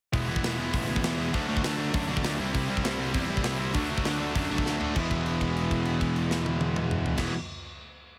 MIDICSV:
0, 0, Header, 1, 5, 480
1, 0, Start_track
1, 0, Tempo, 301356
1, 213, Time_signature, 4, 2, 24, 8
1, 13040, End_track
2, 0, Start_track
2, 0, Title_t, "Distorted electric guitar"
2, 0, Program_c, 0, 30
2, 205, Note_on_c, 0, 52, 95
2, 219, Note_on_c, 0, 56, 100
2, 223, Note_on_c, 0, 59, 113
2, 233, Note_on_c, 0, 64, 110
2, 441, Note_off_c, 0, 64, 0
2, 448, Note_off_c, 0, 59, 0
2, 460, Note_on_c, 0, 64, 89
2, 461, Note_off_c, 0, 56, 0
2, 465, Note_off_c, 0, 52, 0
2, 467, Note_on_c, 0, 59, 90
2, 480, Note_on_c, 0, 56, 70
2, 484, Note_on_c, 0, 52, 78
2, 677, Note_off_c, 0, 52, 0
2, 687, Note_off_c, 0, 56, 0
2, 695, Note_off_c, 0, 59, 0
2, 697, Note_on_c, 0, 52, 100
2, 706, Note_off_c, 0, 64, 0
2, 706, Note_on_c, 0, 56, 101
2, 714, Note_on_c, 0, 59, 115
2, 725, Note_on_c, 0, 64, 106
2, 929, Note_off_c, 0, 64, 0
2, 938, Note_off_c, 0, 59, 0
2, 946, Note_off_c, 0, 56, 0
2, 948, Note_on_c, 0, 64, 91
2, 957, Note_on_c, 0, 59, 89
2, 958, Note_off_c, 0, 52, 0
2, 965, Note_on_c, 0, 56, 81
2, 975, Note_on_c, 0, 52, 67
2, 1170, Note_off_c, 0, 52, 0
2, 1178, Note_off_c, 0, 56, 0
2, 1189, Note_on_c, 0, 52, 97
2, 1193, Note_off_c, 0, 59, 0
2, 1196, Note_off_c, 0, 64, 0
2, 1197, Note_on_c, 0, 56, 102
2, 1212, Note_on_c, 0, 59, 98
2, 1215, Note_on_c, 0, 64, 108
2, 1396, Note_off_c, 0, 64, 0
2, 1405, Note_off_c, 0, 59, 0
2, 1414, Note_off_c, 0, 56, 0
2, 1415, Note_on_c, 0, 64, 101
2, 1424, Note_off_c, 0, 52, 0
2, 1424, Note_on_c, 0, 59, 95
2, 1433, Note_on_c, 0, 56, 87
2, 1443, Note_on_c, 0, 52, 73
2, 1626, Note_off_c, 0, 52, 0
2, 1637, Note_off_c, 0, 56, 0
2, 1646, Note_off_c, 0, 59, 0
2, 1646, Note_on_c, 0, 52, 95
2, 1652, Note_off_c, 0, 64, 0
2, 1657, Note_on_c, 0, 56, 86
2, 1665, Note_on_c, 0, 59, 89
2, 1671, Note_on_c, 0, 64, 104
2, 1856, Note_off_c, 0, 64, 0
2, 1872, Note_off_c, 0, 59, 0
2, 1875, Note_on_c, 0, 64, 103
2, 1876, Note_off_c, 0, 56, 0
2, 1882, Note_off_c, 0, 52, 0
2, 1891, Note_on_c, 0, 59, 86
2, 1895, Note_on_c, 0, 56, 76
2, 1901, Note_on_c, 0, 52, 75
2, 2108, Note_off_c, 0, 64, 0
2, 2110, Note_off_c, 0, 52, 0
2, 2116, Note_off_c, 0, 59, 0
2, 2116, Note_on_c, 0, 50, 96
2, 2118, Note_off_c, 0, 56, 0
2, 2130, Note_on_c, 0, 54, 87
2, 2138, Note_on_c, 0, 57, 110
2, 2153, Note_on_c, 0, 62, 101
2, 2334, Note_off_c, 0, 62, 0
2, 2344, Note_off_c, 0, 57, 0
2, 2353, Note_on_c, 0, 62, 99
2, 2359, Note_off_c, 0, 54, 0
2, 2363, Note_on_c, 0, 57, 80
2, 2364, Note_off_c, 0, 50, 0
2, 2378, Note_on_c, 0, 54, 85
2, 2383, Note_on_c, 0, 50, 68
2, 2581, Note_off_c, 0, 50, 0
2, 2586, Note_off_c, 0, 54, 0
2, 2594, Note_off_c, 0, 57, 0
2, 2600, Note_on_c, 0, 50, 97
2, 2604, Note_off_c, 0, 62, 0
2, 2605, Note_on_c, 0, 54, 101
2, 2613, Note_on_c, 0, 57, 96
2, 2623, Note_on_c, 0, 62, 117
2, 2815, Note_off_c, 0, 62, 0
2, 2832, Note_off_c, 0, 57, 0
2, 2834, Note_on_c, 0, 62, 78
2, 2841, Note_off_c, 0, 54, 0
2, 2846, Note_off_c, 0, 50, 0
2, 2851, Note_on_c, 0, 57, 79
2, 2860, Note_on_c, 0, 54, 76
2, 2865, Note_on_c, 0, 50, 70
2, 3058, Note_off_c, 0, 50, 0
2, 3065, Note_off_c, 0, 54, 0
2, 3075, Note_off_c, 0, 57, 0
2, 3078, Note_on_c, 0, 50, 104
2, 3082, Note_off_c, 0, 62, 0
2, 3084, Note_on_c, 0, 54, 97
2, 3094, Note_on_c, 0, 57, 99
2, 3101, Note_on_c, 0, 62, 107
2, 3305, Note_off_c, 0, 62, 0
2, 3312, Note_off_c, 0, 57, 0
2, 3314, Note_off_c, 0, 54, 0
2, 3323, Note_off_c, 0, 50, 0
2, 3324, Note_on_c, 0, 62, 103
2, 3331, Note_on_c, 0, 57, 96
2, 3333, Note_on_c, 0, 54, 91
2, 3342, Note_on_c, 0, 50, 74
2, 3537, Note_off_c, 0, 50, 0
2, 3552, Note_off_c, 0, 54, 0
2, 3557, Note_on_c, 0, 50, 98
2, 3562, Note_off_c, 0, 57, 0
2, 3570, Note_off_c, 0, 62, 0
2, 3571, Note_on_c, 0, 54, 91
2, 3582, Note_on_c, 0, 57, 94
2, 3589, Note_on_c, 0, 62, 101
2, 3781, Note_off_c, 0, 50, 0
2, 3787, Note_on_c, 0, 48, 101
2, 3791, Note_off_c, 0, 54, 0
2, 3798, Note_on_c, 0, 55, 98
2, 3799, Note_off_c, 0, 57, 0
2, 3805, Note_off_c, 0, 62, 0
2, 3805, Note_on_c, 0, 60, 103
2, 3817, Note_on_c, 0, 64, 105
2, 4011, Note_off_c, 0, 64, 0
2, 4026, Note_off_c, 0, 60, 0
2, 4030, Note_on_c, 0, 64, 107
2, 4031, Note_off_c, 0, 55, 0
2, 4040, Note_off_c, 0, 48, 0
2, 4045, Note_on_c, 0, 60, 91
2, 4050, Note_on_c, 0, 55, 89
2, 4059, Note_on_c, 0, 48, 84
2, 4262, Note_off_c, 0, 48, 0
2, 4281, Note_on_c, 0, 48, 92
2, 4283, Note_off_c, 0, 55, 0
2, 4285, Note_off_c, 0, 60, 0
2, 4297, Note_off_c, 0, 64, 0
2, 4302, Note_on_c, 0, 55, 89
2, 4304, Note_on_c, 0, 60, 90
2, 4316, Note_on_c, 0, 64, 95
2, 4494, Note_off_c, 0, 64, 0
2, 4510, Note_off_c, 0, 60, 0
2, 4513, Note_on_c, 0, 64, 100
2, 4518, Note_off_c, 0, 55, 0
2, 4527, Note_off_c, 0, 48, 0
2, 4529, Note_on_c, 0, 60, 99
2, 4538, Note_on_c, 0, 55, 99
2, 4546, Note_on_c, 0, 48, 89
2, 4742, Note_off_c, 0, 48, 0
2, 4750, Note_off_c, 0, 55, 0
2, 4758, Note_off_c, 0, 60, 0
2, 4761, Note_on_c, 0, 48, 78
2, 4768, Note_off_c, 0, 64, 0
2, 4769, Note_on_c, 0, 55, 79
2, 4777, Note_on_c, 0, 60, 91
2, 4787, Note_on_c, 0, 64, 85
2, 4986, Note_off_c, 0, 64, 0
2, 4995, Note_off_c, 0, 60, 0
2, 5005, Note_on_c, 0, 64, 114
2, 5006, Note_off_c, 0, 55, 0
2, 5014, Note_on_c, 0, 60, 106
2, 5015, Note_off_c, 0, 48, 0
2, 5025, Note_on_c, 0, 55, 98
2, 5035, Note_on_c, 0, 48, 85
2, 5224, Note_off_c, 0, 48, 0
2, 5235, Note_off_c, 0, 55, 0
2, 5235, Note_off_c, 0, 60, 0
2, 5243, Note_on_c, 0, 48, 87
2, 5247, Note_off_c, 0, 64, 0
2, 5254, Note_on_c, 0, 55, 91
2, 5254, Note_on_c, 0, 60, 88
2, 5266, Note_on_c, 0, 64, 91
2, 5452, Note_off_c, 0, 64, 0
2, 5463, Note_off_c, 0, 60, 0
2, 5471, Note_on_c, 0, 64, 96
2, 5474, Note_off_c, 0, 55, 0
2, 5480, Note_off_c, 0, 48, 0
2, 5483, Note_on_c, 0, 60, 78
2, 5493, Note_on_c, 0, 55, 94
2, 5499, Note_on_c, 0, 48, 81
2, 5691, Note_off_c, 0, 48, 0
2, 5698, Note_off_c, 0, 55, 0
2, 5708, Note_off_c, 0, 60, 0
2, 5711, Note_on_c, 0, 48, 84
2, 5717, Note_on_c, 0, 55, 88
2, 5720, Note_off_c, 0, 64, 0
2, 5727, Note_on_c, 0, 60, 92
2, 5739, Note_on_c, 0, 64, 99
2, 5936, Note_off_c, 0, 48, 0
2, 5943, Note_on_c, 0, 50, 100
2, 5950, Note_off_c, 0, 55, 0
2, 5956, Note_on_c, 0, 54, 96
2, 5957, Note_off_c, 0, 60, 0
2, 5962, Note_off_c, 0, 64, 0
2, 5963, Note_on_c, 0, 57, 111
2, 5969, Note_on_c, 0, 62, 111
2, 6187, Note_off_c, 0, 62, 0
2, 6197, Note_off_c, 0, 57, 0
2, 6206, Note_on_c, 0, 62, 91
2, 6210, Note_off_c, 0, 54, 0
2, 6216, Note_off_c, 0, 50, 0
2, 6216, Note_on_c, 0, 57, 99
2, 6229, Note_on_c, 0, 54, 87
2, 6235, Note_on_c, 0, 50, 75
2, 6414, Note_off_c, 0, 50, 0
2, 6420, Note_off_c, 0, 54, 0
2, 6430, Note_off_c, 0, 57, 0
2, 6433, Note_off_c, 0, 62, 0
2, 6433, Note_on_c, 0, 50, 89
2, 6439, Note_on_c, 0, 54, 99
2, 6449, Note_on_c, 0, 57, 94
2, 6452, Note_on_c, 0, 62, 94
2, 6670, Note_off_c, 0, 62, 0
2, 6682, Note_off_c, 0, 57, 0
2, 6687, Note_off_c, 0, 54, 0
2, 6689, Note_on_c, 0, 62, 83
2, 6694, Note_off_c, 0, 50, 0
2, 6701, Note_on_c, 0, 57, 84
2, 6706, Note_on_c, 0, 54, 72
2, 6713, Note_on_c, 0, 50, 69
2, 6904, Note_off_c, 0, 50, 0
2, 6916, Note_off_c, 0, 54, 0
2, 6923, Note_on_c, 0, 50, 102
2, 6928, Note_off_c, 0, 57, 0
2, 6935, Note_on_c, 0, 54, 99
2, 6938, Note_off_c, 0, 62, 0
2, 6947, Note_on_c, 0, 57, 107
2, 6957, Note_on_c, 0, 62, 109
2, 7145, Note_off_c, 0, 62, 0
2, 7151, Note_off_c, 0, 57, 0
2, 7163, Note_off_c, 0, 54, 0
2, 7165, Note_on_c, 0, 62, 90
2, 7170, Note_on_c, 0, 57, 94
2, 7171, Note_off_c, 0, 50, 0
2, 7182, Note_on_c, 0, 54, 91
2, 7190, Note_on_c, 0, 50, 76
2, 7379, Note_off_c, 0, 50, 0
2, 7387, Note_off_c, 0, 54, 0
2, 7394, Note_off_c, 0, 57, 0
2, 7398, Note_on_c, 0, 50, 91
2, 7403, Note_off_c, 0, 62, 0
2, 7406, Note_on_c, 0, 54, 93
2, 7413, Note_on_c, 0, 57, 100
2, 7423, Note_on_c, 0, 62, 92
2, 7629, Note_off_c, 0, 62, 0
2, 7642, Note_off_c, 0, 57, 0
2, 7645, Note_off_c, 0, 54, 0
2, 7648, Note_on_c, 0, 62, 88
2, 7662, Note_off_c, 0, 50, 0
2, 7662, Note_on_c, 0, 57, 82
2, 7664, Note_on_c, 0, 54, 78
2, 7681, Note_on_c, 0, 50, 76
2, 7879, Note_off_c, 0, 62, 0
2, 7885, Note_off_c, 0, 50, 0
2, 7886, Note_off_c, 0, 57, 0
2, 7888, Note_off_c, 0, 54, 0
2, 7892, Note_on_c, 0, 52, 92
2, 7915, Note_on_c, 0, 56, 106
2, 7931, Note_on_c, 0, 59, 100
2, 7952, Note_on_c, 0, 64, 110
2, 11422, Note_off_c, 0, 52, 0
2, 11428, Note_on_c, 0, 52, 93
2, 11452, Note_off_c, 0, 56, 0
2, 11459, Note_on_c, 0, 56, 100
2, 11465, Note_off_c, 0, 59, 0
2, 11472, Note_on_c, 0, 59, 96
2, 11484, Note_off_c, 0, 64, 0
2, 11491, Note_on_c, 0, 64, 107
2, 11656, Note_off_c, 0, 52, 0
2, 11671, Note_off_c, 0, 56, 0
2, 11678, Note_off_c, 0, 59, 0
2, 11687, Note_off_c, 0, 64, 0
2, 13040, End_track
3, 0, Start_track
3, 0, Title_t, "Distorted electric guitar"
3, 0, Program_c, 1, 30
3, 202, Note_on_c, 1, 40, 98
3, 218, Note_on_c, 1, 47, 107
3, 444, Note_off_c, 1, 47, 0
3, 449, Note_off_c, 1, 40, 0
3, 464, Note_on_c, 1, 47, 79
3, 468, Note_on_c, 1, 40, 72
3, 671, Note_off_c, 1, 40, 0
3, 680, Note_off_c, 1, 47, 0
3, 690, Note_on_c, 1, 40, 101
3, 699, Note_on_c, 1, 47, 88
3, 917, Note_off_c, 1, 47, 0
3, 935, Note_off_c, 1, 40, 0
3, 937, Note_on_c, 1, 47, 87
3, 954, Note_on_c, 1, 40, 73
3, 1134, Note_off_c, 1, 40, 0
3, 1143, Note_off_c, 1, 47, 0
3, 1154, Note_on_c, 1, 40, 99
3, 1162, Note_on_c, 1, 47, 96
3, 1371, Note_off_c, 1, 47, 0
3, 1376, Note_on_c, 1, 52, 82
3, 1379, Note_off_c, 1, 40, 0
3, 1390, Note_on_c, 1, 47, 80
3, 1398, Note_on_c, 1, 40, 73
3, 1607, Note_off_c, 1, 40, 0
3, 1607, Note_off_c, 1, 47, 0
3, 1615, Note_off_c, 1, 52, 0
3, 1626, Note_on_c, 1, 40, 98
3, 1626, Note_on_c, 1, 47, 98
3, 1857, Note_off_c, 1, 47, 0
3, 1872, Note_off_c, 1, 40, 0
3, 1876, Note_on_c, 1, 47, 92
3, 1891, Note_on_c, 1, 40, 69
3, 2107, Note_off_c, 1, 47, 0
3, 2116, Note_off_c, 1, 40, 0
3, 7882, Note_on_c, 1, 40, 87
3, 7917, Note_on_c, 1, 47, 102
3, 11398, Note_off_c, 1, 40, 0
3, 11404, Note_on_c, 1, 40, 100
3, 11443, Note_off_c, 1, 47, 0
3, 11450, Note_on_c, 1, 47, 98
3, 11644, Note_off_c, 1, 40, 0
3, 11666, Note_off_c, 1, 47, 0
3, 13040, End_track
4, 0, Start_track
4, 0, Title_t, "Picked electric bass"
4, 0, Program_c, 2, 34
4, 214, Note_on_c, 2, 28, 86
4, 634, Note_off_c, 2, 28, 0
4, 681, Note_on_c, 2, 28, 94
4, 1107, Note_off_c, 2, 28, 0
4, 1165, Note_on_c, 2, 33, 80
4, 1378, Note_off_c, 2, 33, 0
4, 1410, Note_on_c, 2, 38, 88
4, 1621, Note_off_c, 2, 38, 0
4, 1637, Note_on_c, 2, 40, 89
4, 2064, Note_off_c, 2, 40, 0
4, 2138, Note_on_c, 2, 38, 100
4, 2556, Note_off_c, 2, 38, 0
4, 2605, Note_on_c, 2, 38, 86
4, 3029, Note_off_c, 2, 38, 0
4, 3090, Note_on_c, 2, 42, 85
4, 3301, Note_off_c, 2, 42, 0
4, 3321, Note_on_c, 2, 35, 88
4, 3536, Note_off_c, 2, 35, 0
4, 3558, Note_on_c, 2, 38, 82
4, 3775, Note_off_c, 2, 38, 0
4, 3794, Note_on_c, 2, 36, 91
4, 4012, Note_off_c, 2, 36, 0
4, 4050, Note_on_c, 2, 36, 92
4, 4473, Note_off_c, 2, 36, 0
4, 4520, Note_on_c, 2, 36, 93
4, 4948, Note_off_c, 2, 36, 0
4, 5004, Note_on_c, 2, 40, 84
4, 5219, Note_off_c, 2, 40, 0
4, 5234, Note_on_c, 2, 33, 96
4, 5453, Note_off_c, 2, 33, 0
4, 5475, Note_on_c, 2, 36, 83
4, 5906, Note_off_c, 2, 36, 0
4, 5963, Note_on_c, 2, 38, 99
4, 6391, Note_off_c, 2, 38, 0
4, 6464, Note_on_c, 2, 38, 102
4, 6884, Note_off_c, 2, 38, 0
4, 6928, Note_on_c, 2, 42, 81
4, 7144, Note_off_c, 2, 42, 0
4, 7186, Note_on_c, 2, 35, 93
4, 7394, Note_off_c, 2, 35, 0
4, 7404, Note_on_c, 2, 38, 92
4, 7833, Note_off_c, 2, 38, 0
4, 7895, Note_on_c, 2, 28, 92
4, 11329, Note_off_c, 2, 28, 0
4, 11436, Note_on_c, 2, 28, 90
4, 11644, Note_off_c, 2, 28, 0
4, 13040, End_track
5, 0, Start_track
5, 0, Title_t, "Drums"
5, 215, Note_on_c, 9, 36, 101
5, 215, Note_on_c, 9, 46, 55
5, 374, Note_off_c, 9, 36, 0
5, 375, Note_off_c, 9, 46, 0
5, 576, Note_on_c, 9, 36, 92
5, 698, Note_on_c, 9, 46, 62
5, 706, Note_on_c, 9, 38, 114
5, 735, Note_off_c, 9, 36, 0
5, 857, Note_off_c, 9, 46, 0
5, 865, Note_off_c, 9, 38, 0
5, 1172, Note_on_c, 9, 46, 66
5, 1174, Note_on_c, 9, 36, 111
5, 1332, Note_off_c, 9, 46, 0
5, 1333, Note_off_c, 9, 36, 0
5, 1533, Note_on_c, 9, 36, 82
5, 1652, Note_on_c, 9, 46, 63
5, 1660, Note_on_c, 9, 38, 116
5, 1693, Note_off_c, 9, 36, 0
5, 1811, Note_off_c, 9, 46, 0
5, 1819, Note_off_c, 9, 38, 0
5, 2134, Note_on_c, 9, 46, 49
5, 2136, Note_on_c, 9, 36, 87
5, 2293, Note_off_c, 9, 46, 0
5, 2296, Note_off_c, 9, 36, 0
5, 2496, Note_on_c, 9, 36, 91
5, 2610, Note_on_c, 9, 46, 63
5, 2618, Note_on_c, 9, 38, 106
5, 2655, Note_off_c, 9, 36, 0
5, 2769, Note_off_c, 9, 46, 0
5, 2777, Note_off_c, 9, 38, 0
5, 3087, Note_on_c, 9, 46, 62
5, 3093, Note_on_c, 9, 36, 123
5, 3247, Note_off_c, 9, 46, 0
5, 3252, Note_off_c, 9, 36, 0
5, 3453, Note_on_c, 9, 36, 92
5, 3568, Note_on_c, 9, 46, 62
5, 3576, Note_on_c, 9, 38, 123
5, 3612, Note_off_c, 9, 36, 0
5, 3727, Note_off_c, 9, 46, 0
5, 3735, Note_off_c, 9, 38, 0
5, 4056, Note_on_c, 9, 36, 92
5, 4057, Note_on_c, 9, 46, 56
5, 4215, Note_off_c, 9, 36, 0
5, 4216, Note_off_c, 9, 46, 0
5, 4412, Note_on_c, 9, 36, 82
5, 4531, Note_on_c, 9, 46, 62
5, 4539, Note_on_c, 9, 38, 117
5, 4572, Note_off_c, 9, 36, 0
5, 4690, Note_off_c, 9, 46, 0
5, 4698, Note_off_c, 9, 38, 0
5, 5001, Note_on_c, 9, 46, 60
5, 5009, Note_on_c, 9, 36, 116
5, 5160, Note_off_c, 9, 46, 0
5, 5168, Note_off_c, 9, 36, 0
5, 5368, Note_on_c, 9, 36, 92
5, 5475, Note_on_c, 9, 46, 64
5, 5483, Note_on_c, 9, 38, 113
5, 5527, Note_off_c, 9, 36, 0
5, 5635, Note_off_c, 9, 46, 0
5, 5642, Note_off_c, 9, 38, 0
5, 5954, Note_on_c, 9, 46, 54
5, 5967, Note_on_c, 9, 36, 99
5, 6113, Note_off_c, 9, 46, 0
5, 6126, Note_off_c, 9, 36, 0
5, 6333, Note_on_c, 9, 36, 92
5, 6450, Note_on_c, 9, 46, 59
5, 6458, Note_on_c, 9, 38, 110
5, 6492, Note_off_c, 9, 36, 0
5, 6609, Note_off_c, 9, 46, 0
5, 6617, Note_off_c, 9, 38, 0
5, 6937, Note_on_c, 9, 36, 112
5, 6938, Note_on_c, 9, 46, 68
5, 7096, Note_off_c, 9, 36, 0
5, 7098, Note_off_c, 9, 46, 0
5, 7299, Note_on_c, 9, 36, 76
5, 7426, Note_on_c, 9, 38, 67
5, 7458, Note_off_c, 9, 36, 0
5, 7585, Note_off_c, 9, 38, 0
5, 7659, Note_on_c, 9, 43, 87
5, 7818, Note_off_c, 9, 43, 0
5, 7896, Note_on_c, 9, 49, 81
5, 7900, Note_on_c, 9, 36, 93
5, 8055, Note_off_c, 9, 49, 0
5, 8059, Note_off_c, 9, 36, 0
5, 8137, Note_on_c, 9, 36, 67
5, 8137, Note_on_c, 9, 49, 45
5, 8296, Note_off_c, 9, 36, 0
5, 8296, Note_off_c, 9, 49, 0
5, 8377, Note_on_c, 9, 57, 47
5, 8536, Note_off_c, 9, 57, 0
5, 8619, Note_on_c, 9, 36, 61
5, 8619, Note_on_c, 9, 49, 46
5, 8778, Note_off_c, 9, 36, 0
5, 8779, Note_off_c, 9, 49, 0
5, 8865, Note_on_c, 9, 57, 48
5, 9024, Note_off_c, 9, 57, 0
5, 9096, Note_on_c, 9, 36, 66
5, 9097, Note_on_c, 9, 49, 54
5, 9256, Note_off_c, 9, 36, 0
5, 9257, Note_off_c, 9, 49, 0
5, 9325, Note_on_c, 9, 57, 52
5, 9484, Note_off_c, 9, 57, 0
5, 9573, Note_on_c, 9, 49, 53
5, 9574, Note_on_c, 9, 36, 66
5, 9732, Note_off_c, 9, 49, 0
5, 9733, Note_off_c, 9, 36, 0
5, 9812, Note_on_c, 9, 57, 48
5, 9971, Note_off_c, 9, 57, 0
5, 10053, Note_on_c, 9, 38, 92
5, 10212, Note_off_c, 9, 38, 0
5, 10290, Note_on_c, 9, 48, 90
5, 10449, Note_off_c, 9, 48, 0
5, 10525, Note_on_c, 9, 48, 91
5, 10684, Note_off_c, 9, 48, 0
5, 10772, Note_on_c, 9, 47, 97
5, 10932, Note_off_c, 9, 47, 0
5, 11009, Note_on_c, 9, 45, 100
5, 11168, Note_off_c, 9, 45, 0
5, 11242, Note_on_c, 9, 43, 105
5, 11401, Note_off_c, 9, 43, 0
5, 11430, Note_on_c, 9, 49, 101
5, 11438, Note_on_c, 9, 38, 94
5, 11440, Note_on_c, 9, 36, 103
5, 11589, Note_off_c, 9, 49, 0
5, 11597, Note_off_c, 9, 38, 0
5, 11600, Note_off_c, 9, 36, 0
5, 13040, End_track
0, 0, End_of_file